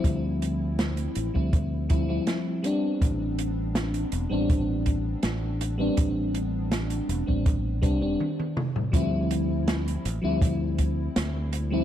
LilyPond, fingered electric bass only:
\new Staff \with { instrumentName = "Fingered electric bass" } { \clef bass \time 4/4 \key d \dorian \tempo 4 = 81 d,4~ d,16 r16 a,,16 d,4 r4 r16 | a,,4~ a,,16 r16 e,,16 a,,4 r16 a,,8. r16 | a,,4~ a,,16 r16 e,,16 a,,8. c,16 e,,16 r4 | d,4~ d,16 r16 a,,16 d,4 r16 d,8. r16 | }